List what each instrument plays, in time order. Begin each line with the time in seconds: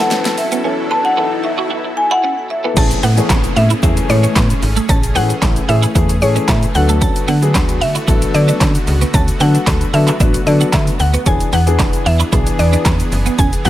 Already playing: supersaw synth B2 F#3 E4 A4, riser
0.00 grand piano E3 B3 A4, marimba F#5
0.11 clean electric guitar C#4, snare, closed hi-hat, shaker
0.25 snare, closed hi-hat, shaker
0.38 marimba E5, muted clean electric guitar stroke, open hi-hat, shaker
0.52 clean electric guitar B3, closed hi-hat, shaker
0.64 grand piano E3 B3 A4, clean electric guitar C#4
0.91 clean electric guitar B3, marimba A5
1.05 marimba F#5, muted clean electric guitar stroke
1.17 grand piano E3 B3 A4, clean electric guitar E4
1.44 marimba E5, muted clean electric guitar stroke
1.58 clean electric guitar F#4
1.70 clean electric guitar F#4
1.84 muted clean electric guitar stroke
1.97 marimba G#5
2.11 clean electric guitar E4, marimba F#5
2.24 clean electric guitar C#4
2.50 marimba E5, muted clean electric guitar stroke
2.64 grand piano E3 B3 A4, clean electric guitar B3
2.76 fm bass A1, grand piano E3 A3 C#4 G#4, supersaw synth A3 C#4 G#4, clean electric guitar C#4, synth pluck A5, kick, closed hi-hat, crash, downlifter, shaker
2.91 closed hi-hat, shaker
3.03 fm bass A2, clean electric guitar B3, synth pluck F#5, open hi-hat, shaker
3.17 grand piano E3 A3 C#4 G#4, muted clean electric guitar stroke, closed hi-hat, shaker
3.30 fm bass A1, clean electric guitar C#4, kick, snare, clap, closed hi-hat, shaker
3.44 closed hi-hat, shaker
3.56 fm bass A2, synth pluck E5, muted clean electric guitar stroke, open hi-hat, shaker
3.70 clean electric guitar E4, closed hi-hat, shaker
3.83 fm bass E2, grand piano E3 A3 C#4 G#4, clean electric guitar E4, kick, closed hi-hat, shaker
3.97 muted clean electric guitar stroke, closed hi-hat, shaker
4.09 fm bass A2, synth pluck C#5, open hi-hat, shaker
4.23 clean electric guitar C#4, closed hi-hat, shaker
4.36 fm bass A2, clean electric guitar B3, kick, snare, clap, closed hi-hat, shaker
4.50 closed hi-hat, shaker
4.62 fm bass G#1, muted clean electric guitar stroke, open hi-hat, shaker
4.76 clean electric guitar A3, closed hi-hat, shaker
4.89 fm bass A1, clean electric guitar C#4, synth pluck A5, kick, closed hi-hat, shaker
5.03 closed hi-hat, shaker
5.15 fm bass A2, grand piano E3 A3 C#4 G#4, clean electric guitar B3, synth pluck F#5, open hi-hat, shaker
5.29 muted clean electric guitar stroke, closed hi-hat, shaker
5.42 fm bass A1, grand piano E3 A3 C#4 E4, clean electric guitar C#4, kick, snare, clap, closed hi-hat, shaker
5.56 closed hi-hat, shaker
5.69 fm bass A2, grand piano E3 A3 C#4 G#4, synth pluck E5, muted clean electric guitar stroke, open hi-hat, shaker
5.83 clean electric guitar E4, closed hi-hat, shaker
5.95 fm bass E2, grand piano E3 A3 C#4 G#4, clean electric guitar E4, kick, closed hi-hat, shaker
6.09 muted clean electric guitar stroke, closed hi-hat, shaker
6.22 fm bass A2, grand piano E3 A3 C#4 G#4, synth pluck C#5, open hi-hat, shaker
6.36 clean electric guitar C#4, closed hi-hat, shaker
6.48 fm bass A2, clean electric guitar B3, synth pluck E5, kick, snare, clap, closed hi-hat, shaker
6.62 closed hi-hat, shaker
6.75 fm bass D2, supersaw synth D3 B3 F#4, grand piano F#3 B3 D4 A4, synth pluck F#5, muted clean electric guitar stroke, open hi-hat, shaker
6.89 clean electric guitar A3, closed hi-hat, shaker
7.01 clean electric guitar C#4, synth pluck A5, kick, closed hi-hat, shaker
7.16 closed hi-hat, shaker
7.28 fm bass D3, clean electric guitar B3, synth pluck F#5, open hi-hat, shaker
7.42 grand piano F#3 B3 D4 G#4, muted clean electric guitar stroke, closed hi-hat, shaker
7.55 fm bass D2, clean electric guitar D4, kick, snare, clap, closed hi-hat, shaker
7.69 closed hi-hat, shaker
7.81 fm bass D3, synth pluck E5, muted clean electric guitar stroke, open hi-hat, shaker
7.95 clean electric guitar E4, closed hi-hat, shaker
8.07 fm bass A1, grand piano F#3 B3 D4 A4, clean electric guitar E4, kick, closed hi-hat, shaker
8.22 muted clean electric guitar stroke, closed hi-hat, shaker
8.34 fm bass D3, synth pluck D5, open hi-hat, shaker
8.48 clean electric guitar D4, closed hi-hat, shaker
8.61 fm bass D3, clean electric guitar C#4, kick, snare, clap, closed hi-hat, shaker
8.75 closed hi-hat, shaker
8.87 fm bass C#2, muted clean electric guitar stroke, open hi-hat, shaker
9.01 clean electric guitar B3, closed hi-hat, shaker
9.14 fm bass D2, clean electric guitar C#4, synth pluck A5, kick, closed hi-hat, shaker
9.28 closed hi-hat, shaker
9.40 fm bass D3, grand piano F#3 B3 D4 A4, clean electric guitar B3, synth pluck F#5, open hi-hat, shaker
9.54 muted clean electric guitar stroke, closed hi-hat, shaker
9.67 fm bass D2, grand piano F#3 B3 D4 A4, clean electric guitar D4, kick, snare, clap, closed hi-hat, shaker
9.81 closed hi-hat, shaker
9.93 fm bass D3, grand piano F#3 B3 D4 A4, synth pluck E5, muted clean electric guitar stroke, open hi-hat, shaker
10.07 clean electric guitar E4, clap, closed hi-hat, shaker
10.20 fm bass A1, grand piano F#3 B3 D4 B4, clean electric guitar D4, kick, closed hi-hat, shaker
10.34 muted clean electric guitar stroke, closed hi-hat, shaker
10.46 fm bass D3, grand piano F#3 B3 D4 A4, synth pluck D5, open hi-hat, shaker
10.61 clean electric guitar F#4, closed hi-hat, shaker
10.73 fm bass D3, clean electric guitar D4, synth pluck E5, kick, snare, clap, closed hi-hat, shaker
10.87 closed hi-hat, shaker
11.00 fm bass D2, synth pluck F#5, muted clean electric guitar stroke, open hi-hat, shaker
11.14 clean electric guitar B3, closed hi-hat, shaker
11.26 fm bass E1, grand piano E3 B3 D4 G#4, supersaw synth E3 D4 G#4, clean electric guitar C#4, synth pluck G#5, kick, closed hi-hat, shaker
11.40 closed hi-hat, shaker
11.53 fm bass E2, clean electric guitar B3, synth pluck F#5, open hi-hat, shaker
11.67 grand piano E3 B3 D4 G#4, muted clean electric guitar stroke, closed hi-hat, shaker
11.79 fm bass E1, clean electric guitar D4, kick, snare, clap, closed hi-hat, shaker
11.93 closed hi-hat, shaker
12.06 fm bass E2, synth pluck E5, muted clean electric guitar stroke, open hi-hat, shaker
12.20 clean electric guitar E4, closed hi-hat, shaker
12.32 fm bass B1, grand piano E3 B3 D4 G#4, clean electric guitar E4, kick, closed hi-hat, shaker
12.46 muted clean electric guitar stroke, closed hi-hat, shaker
12.59 fm bass E2, synth pluck D5, open hi-hat, shaker
12.73 clean electric guitar D4, closed hi-hat, shaker
12.85 fm bass E2, clean electric guitar C#4, kick, snare, clap, closed hi-hat, shaker
13.00 closed hi-hat, shaker
13.12 fm bass F#1, muted clean electric guitar stroke, open hi-hat, shaker
13.26 clean electric guitar B3, closed hi-hat, shaker
13.38 fm bass E1, clean electric guitar C#4, supersaw synth E4, synth pluck G#5, kick, closed hi-hat, shaker
13.53 closed hi-hat, shaker
13.65 fm bass E2, grand piano E3 B3 D4 F#4, clean electric guitar B3, synth pluck F#5, open hi-hat, shaker